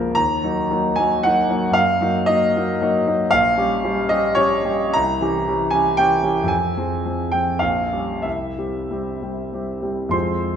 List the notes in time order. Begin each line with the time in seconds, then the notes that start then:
Already playing: C#2 F3 A#3 F4 A#4 C5
0.15 D#2 A#5
0.44 F#3 A#3 D#4
0.70 F#3 A#3 D#4
0.96 F#3 A#3 D#4 G#5
1.23 F#3 A#3 D#4 F#5
1.50 F#3 A#3 D#4
1.71 F#2 F5
2.01 F#3 A#3 D#4
2.26 F#3 A#3 D#4 D#5
2.56 F#3 A#3 D#4
2.82 F#3 A#3 D#4
3.07 F#3 A#3 D#4
3.31 A#1 F5
3.57 G3 C#4 G4
3.84 G3 C#4 G4
4.09 G3 C#4 G4 D#5
4.35 G3 C#4 G4 C#5
4.65 G3 C#4 G4
4.93 C2 A#5
5.21 E3 C#4 G4
5.48 E3 C#4 G4
5.71 E3 C#4 G4 G#5
5.97 E3 C#4 G4 G5
6.23 E3 C#4 G4
6.43 F2
6.48 G#5
6.77 F3 C4 G#4
7.05 F3 C4 G#4
7.32 F3 C4 G#4 G5
7.59 A#1 F5
7.92 G3 C#4 G4
8.22 C2 E5
8.58 G3 C4 G4
8.91 G3 C4 G4
9.22 G3 C4 G4
9.53 G3 C4 G4
9.82 G3 C4 G4
10.09 F2 G#3 C4 F4 C5 C6